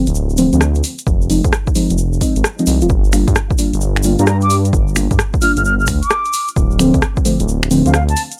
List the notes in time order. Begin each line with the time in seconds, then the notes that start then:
0.06 D1, closed hi-hat, shaker
0.15 shaker
0.30 shaker
0.37 D3 F3 A3 C4, open hi-hat, shaker
0.53 D2 D3 F3 A3 C4, closed hi-hat, shaker
0.61 cross-stick, shaker
0.75 closed hi-hat, shaker
0.84 open hi-hat, shaker
0.98 closed hi-hat, shaker
1.07 F1, kick, shaker
1.21 shaker
1.30 F3 G#3 C4 D#4, open hi-hat, shaker
1.44 F2, kick, closed hi-hat, shaker
1.52 cross-stick, shaker
1.67 kick, shaker
1.75 F3 G#3 C4 D#4, open hi-hat, shaker
1.90 F1, closed hi-hat, shaker
1.98 shaker
2.13 shaker
2.21 F3 G#3 C4 D#4, kick, open hi-hat, shaker
2.36 G#1, closed hi-hat, shaker
2.44 cross-stick, shaker
2.59 F3 G#3 C4 D#4, closed hi-hat, shaker
2.67 C2 F3 G#3 C4 D#4, open hi-hat, shaker
2.81 D#1 F3 G#3 C4 F4, closed hi-hat, shaker
2.89 G1, kick, shaker
3.04 shaker
3.12 G3 A#3 D4 F4, finger snap, open hi-hat, shaker
3.28 G2, kick, closed hi-hat, shaker
3.35 cross-stick, shaker
3.50 kick, shaker
3.58 G3 A#3 D4 F4, open hi-hat, shaker
3.73 G1, closed hi-hat, shaker
3.81 shaker
3.96 finger snap, shaker
4.03 G3 A#3 D4 F4, open hi-hat, shaker
4.19 G2 G3 A#3 D4 F4 A#5, closed hi-hat, shaker
4.27 A#5, cross-stick, shaker
4.41 D6, closed hi-hat, shaker
4.50 open hi-hat, shaker
4.65 closed hi-hat, shaker
4.73 G1, kick, shaker
4.88 shaker
4.96 G3 A#3 D4 F4, finger snap, open hi-hat, shaker
5.11 G2, kick, closed hi-hat, shaker
5.19 cross-stick, shaker
5.34 kick, shaker
5.41 G3 A#3 D4 F4 F6, open hi-hat, shaker
5.56 G1 F6, closed hi-hat, shaker
5.65 F6, shaker
5.80 F6, shaker
5.87 D2, finger snap, kick, open hi-hat, shaker
6.02 D6, closed hi-hat, shaker
6.10 cross-stick, shaker
6.25 closed hi-hat, shaker
6.33 open hi-hat, shaker
6.48 closed hi-hat, shaker
6.56 D1, kick, shaker
6.71 shaker
6.79 D3 F3 A3 C4, finger snap, open hi-hat, shaker
6.94 D2, kick, closed hi-hat, shaker
7.02 cross-stick, shaker
7.17 kick, shaker
7.25 D3 F3 A3 C4, open hi-hat, shaker
7.40 D1, closed hi-hat, shaker
7.48 shaker
7.63 finger snap, shaker
7.71 D3 F3 A3 C4, open hi-hat, shaker
7.86 D2 D3 F3 A3 C4 F5, closed hi-hat, shaker
7.94 F5, cross-stick, shaker
8.09 A5, closed hi-hat, shaker
8.17 open hi-hat, shaker
8.32 closed hi-hat, shaker